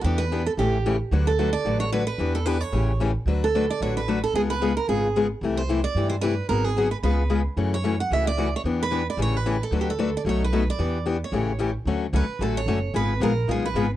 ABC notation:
X:1
M:4/4
L:1/16
Q:"Swing" 1/4=223
K:D
V:1 name="Steel-string acoustic guitar"
G2 B4 A2 G6 z2 | z2 A4 d4 c2 B2 B2- | B2 A2 B2 c6 z4 | z2 A4 d2 c2 B4 A2 |
^G2 B4 _B2 G6 z2 | z2 =c4 d4 c2 B4 | _B2 ^G4 =B2 B6 z2 | z2 c4 f2 e2 d4 c2 |
z2 B4 d2 c2 B4 A2 | z G A4 d2 c2 B4 d2- | d4 z2 c8 z2 | z4 B4 A2 c6 |
B4 _B4 ^G2 =B4 z2 |]
V:2 name="Steel-string acoustic guitar"
[E,B,DG]2 z2 [E,B,DG]2 z2 [C,E,A,CG]2 z2 [C,E,A,CG]2 z2 | [D,F,A,DFB]2 z2 [D,F,A,DFB]2 z2 [D,F,A,DFB]2 z2 [D,F,A,DFB]2 z2 | [E,B,DG]2 z2 [E,B,DG]2 z2 [C,E,A,CG]2 z2 [C,E,A,CG]2 z2 | [D,F,A,DFB]2 z2 [D,F,A,DFB]2 z2 [D,F,A,DFB]2 z2 [D,F,A,DFB]2 z2 |
[C,^G,B,^E^G]2 z2 [C,G,B,EG]2 z2 [C,G,B,EG]2 z2 [C,G,B,EG]2 z2 | [=C,E,A,EG]2 z2 [C,E,A,EG]2 z2 [C,E,A,EG]2 z2 [C,E,A,EG]2 z2 | [D,F,B,F^G]2 z2 [D,F,B,FG]2 z2 [C,^G,B,^EG]2 z2 [C,G,B,EG]2 z2 | [C,E,A,CF]2 z2 [C,E,A,CF]2 z2 [C,E,A,CF]2 z2 [C,E,A,CF]2 z2 |
[E,B,DG]2 z2 [E,B,DG]2 z2 [C,E,A,CG]2 z2 [C,E,A,CG]2 z2 | [D,F,A,DFB]2 z2 [D,F,A,DFB]2 z2 [B,,F,A,^DF]2 z2 [B,,F,A,DF]2 z2 | [E,B,DG]2 z2 [E,B,DG]2 z2 [C,E,A,CG]2 z2 [C,E,A,CG]2 z2 | [D,F,A,CF]2 z2 [D,F,A,CF]2 z2 [D,F,A,CF]2 z2 [D,F,A,CF]2 z2 |
[C,^G,B,^E^G]2 z2 [C,G,B,EG]2 z2 [C,G,B,EG]2 z2 [C,G,B,EG]2 z2 |]
V:3 name="Upright bass" clef=bass
E,,8 A,,,8 | D,,8 A,,,8 | E,,8 A,,,8 | D,,8 A,,,8 |
C,,8 ^G,,,8 | =C,,8 G,,8 | ^G,,,8 C,,8 | F,,8 C,,8 |
E,,8 A,,,8 | D,,8 B,,,8 | E,,8 A,,,8 | D,,4 C,,2 z2 A,,,4 F,,,4 |
^G,,,4 _B,,,4 =B,,,4 G,,,4 |]